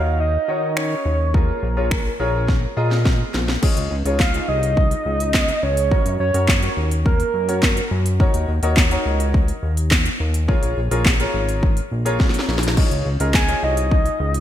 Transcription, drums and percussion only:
0.77 finger snap loud
1.34 kick loud
1.91 finger snap loud
1.91 kick loud
2.48 kick loud
2.48 snare medium
2.91 snare medium
3.05 kick loud
3.05 snare medium
3.34 snare medium
3.48 snare medium
3.63 kick loud
3.63 crash medium
3.77 closed hi-hat medium
4.06 closed hi-hat medium
4.20 kick loud
4.20 snare medium
4.20 clap loud
4.34 closed hi-hat soft
4.63 closed hi-hat medium
4.77 kick loud
4.91 closed hi-hat medium
5.20 closed hi-hat medium
5.34 kick loud
5.34 snare medium
5.34 clap loud
5.48 closed hi-hat medium
5.77 closed hi-hat medium
5.91 kick loud
6.06 closed hi-hat medium
6.34 closed hi-hat medium
6.48 kick loud
6.48 snare medium
6.48 clap loud
6.63 closed hi-hat soft
6.91 closed hi-hat medium
7.06 kick loud
7.20 closed hi-hat medium
7.49 closed hi-hat medium
7.63 kick loud
7.63 snare medium
7.63 clap loud
7.77 closed hi-hat medium
8.06 closed hi-hat medium
8.20 kick loud
8.34 closed hi-hat medium
8.63 closed hi-hat medium
8.77 kick loud
8.77 snare medium
8.77 clap loud
8.91 closed hi-hat soft
9.20 closed hi-hat medium
9.34 kick loud
9.48 closed hi-hat soft
9.77 closed hi-hat medium
9.91 kick loud
9.91 snare medium
9.91 clap loud
10.06 closed hi-hat medium
10.34 closed hi-hat medium
10.49 kick loud
10.63 closed hi-hat medium
10.91 closed hi-hat medium
11.06 kick loud
11.06 snare medium
11.06 clap loud
11.20 closed hi-hat soft
11.49 closed hi-hat medium
11.63 kick loud
11.77 closed hi-hat soft
12.06 closed hi-hat medium
12.20 kick loud
12.20 snare medium
12.29 snare medium
12.34 closed hi-hat medium
12.39 snare medium
12.49 snare medium
12.58 snare medium
12.63 closed hi-hat medium
12.68 snare medium
12.77 kick loud
12.77 crash medium
12.91 closed hi-hat medium
13.20 closed hi-hat medium
13.34 kick loud
13.34 snare medium
13.34 clap loud
13.48 closed hi-hat soft
13.77 closed hi-hat medium
13.91 kick loud
14.06 closed hi-hat soft
14.34 closed hi-hat medium

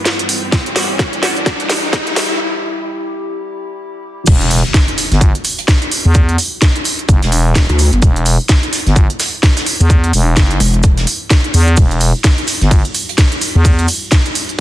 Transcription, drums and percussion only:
0.05 snare medium
0.05 closed hi-hat medium
0.19 closed hi-hat medium
0.29 open hi-hat loud
0.52 kick loud
0.52 snare medium
0.52 closed hi-hat medium
0.66 closed hi-hat medium
0.76 snare medium
0.76 open hi-hat loud
0.99 kick loud
0.99 snare medium
0.99 closed hi-hat medium
1.13 closed hi-hat medium
1.23 snare medium
1.23 open hi-hat loud
1.37 closed hi-hat soft
1.46 kick loud
1.46 snare medium
1.46 closed hi-hat medium
1.60 closed hi-hat medium
1.70 snare medium
1.70 open hi-hat loud
1.93 kick loud
1.93 snare medium
1.93 closed hi-hat medium
2.07 closed hi-hat medium
2.16 snare medium
2.16 open hi-hat loud
4.27 kick loud
4.27 closed hi-hat medium
4.27 crash loud
4.27 shaker medium
4.41 closed hi-hat medium
4.51 open hi-hat loud
4.51 shaker medium
4.74 kick loud
4.74 snare loud
4.74 closed hi-hat medium
4.74 shaker medium
4.88 closed hi-hat medium
4.98 snare soft
4.98 open hi-hat loud
4.98 shaker medium
5.12 snare soft
5.12 closed hi-hat soft
5.21 kick loud
5.21 closed hi-hat medium
5.21 shaker medium
5.35 closed hi-hat medium
5.45 open hi-hat loud
5.45 shaker medium
5.59 closed hi-hat soft
5.68 kick loud
5.68 snare loud
5.68 closed hi-hat medium
5.68 shaker medium
5.82 closed hi-hat medium
5.92 open hi-hat loud
5.92 shaker medium
6.15 kick loud
6.15 closed hi-hat medium
6.15 shaker medium
6.29 closed hi-hat medium
6.38 open hi-hat loud
6.38 shaker medium
6.62 kick loud
6.62 snare loud
6.62 closed hi-hat medium
6.62 shaker medium
6.76 closed hi-hat medium
6.85 open hi-hat loud
6.85 shaker medium
6.99 closed hi-hat soft
7.09 kick loud
7.09 closed hi-hat medium
7.09 shaker medium
7.22 snare soft
7.22 closed hi-hat medium
7.32 open hi-hat loud
7.32 shaker medium
7.55 kick loud
7.55 snare loud
7.55 closed hi-hat medium
7.55 shaker loud
7.69 closed hi-hat medium
7.79 open hi-hat loud
7.79 shaker medium
7.93 closed hi-hat soft
8.02 kick loud
8.02 closed hi-hat medium
8.02 shaker medium
8.16 closed hi-hat medium
8.26 open hi-hat loud
8.26 shaker medium
8.49 kick loud
8.49 snare loud
8.49 closed hi-hat medium
8.49 shaker medium
8.63 closed hi-hat medium
8.73 snare soft
8.73 open hi-hat loud
8.73 shaker medium
8.87 snare soft
8.87 closed hi-hat soft
8.96 kick loud
8.96 closed hi-hat medium
8.96 shaker medium
9.10 closed hi-hat medium
9.20 snare loud
9.20 open hi-hat loud
9.20 shaker medium
9.43 kick loud
9.43 snare loud
9.43 closed hi-hat medium
9.43 shaker medium
9.57 snare loud
9.57 closed hi-hat medium
9.57 shaker medium
9.66 open hi-hat loud
9.80 shaker medium
9.90 kick loud
9.90 closed hi-hat medium
9.90 shaker medium
10.04 closed hi-hat medium
10.13 open hi-hat loud
10.13 shaker medium
10.37 kick loud
10.37 snare loud
10.37 closed hi-hat medium
10.37 shaker medium
10.51 closed hi-hat medium
10.60 open hi-hat loud
10.60 shaker medium
10.74 closed hi-hat soft
10.83 kick loud
10.83 closed hi-hat medium
10.83 shaker medium
10.97 snare medium
10.97 closed hi-hat medium
11.07 open hi-hat loud
11.07 shaker medium
11.30 kick loud
11.30 snare loud
11.30 closed hi-hat medium
11.30 shaker medium
11.44 closed hi-hat soft
11.54 open hi-hat loud
11.54 shaker medium
11.68 closed hi-hat soft
11.77 kick loud
11.77 closed hi-hat medium
11.77 ride medium
11.77 shaker medium
11.91 closed hi-hat soft
12.00 open hi-hat loud
12.00 shaker medium
12.24 kick loud
12.24 snare loud
12.24 closed hi-hat medium
12.24 ride medium
12.24 shaker medium
12.38 closed hi-hat medium
12.47 snare soft
12.47 open hi-hat loud
12.47 shaker medium
12.61 snare soft
12.61 closed hi-hat soft
12.71 kick loud
12.71 closed hi-hat medium
12.71 ride medium
12.71 shaker medium
12.85 closed hi-hat medium
12.95 open hi-hat loud
12.95 shaker medium
13.09 closed hi-hat soft
13.18 kick loud
13.18 snare loud
13.18 closed hi-hat medium
13.18 ride medium
13.18 shaker medium
13.32 closed hi-hat soft
13.41 open hi-hat loud
13.41 shaker medium
13.65 kick loud
13.65 closed hi-hat medium
13.65 ride medium
13.65 shaker medium
13.79 closed hi-hat medium
13.88 open hi-hat loud
13.88 shaker medium
14.11 kick loud
14.11 snare loud
14.11 closed hi-hat medium
14.11 ride medium
14.11 shaker loud
14.26 closed hi-hat medium
14.35 open hi-hat loud
14.35 shaker medium
14.49 closed hi-hat soft

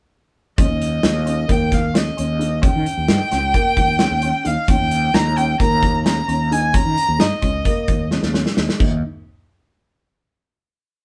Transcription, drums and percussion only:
0.58 kick loud
0.58 closed hi-hat medium
0.82 closed hi-hat medium
1.03 snare loud
1.03 closed hi-hat medium
1.27 closed hi-hat medium
1.49 kick medium
1.49 closed hi-hat medium
1.72 kick medium
1.72 snare soft
1.72 closed hi-hat medium
1.95 snare loud
1.95 closed hi-hat medium
2.18 closed hi-hat medium
2.41 closed hi-hat medium
2.63 kick loud
2.63 closed hi-hat medium
2.86 closed hi-hat soft
3.08 snare loud
3.08 closed hi-hat medium
3.32 snare soft
3.32 closed hi-hat medium
3.54 kick medium
3.54 closed hi-hat medium
3.77 kick medium
3.77 closed hi-hat medium
3.99 snare loud
3.99 closed hi-hat medium
4.22 closed hi-hat medium
4.45 closed hi-hat medium
4.68 kick loud
4.68 closed hi-hat medium
4.91 closed hi-hat medium
5.14 snare loud
5.14 closed hi-hat medium
5.38 closed hi-hat medium
5.60 kick medium
5.60 closed hi-hat medium
5.83 kick medium
5.83 closed hi-hat medium
6.06 snare medium
6.06 closed hi-hat medium
6.29 closed hi-hat medium
6.52 closed hi-hat medium
6.74 kick loud
6.74 closed hi-hat medium
6.98 closed hi-hat medium
7.20 snare loud
7.20 closed hi-hat medium
7.42 kick medium
7.42 closed hi-hat medium
7.65 kick medium
7.65 closed hi-hat medium
7.88 kick medium
7.88 closed hi-hat medium
8.11 snare medium
8.23 snare medium
8.34 snare medium
8.46 snare medium
8.57 snare medium
8.69 snare medium
8.80 kick loud
8.80 crash medium

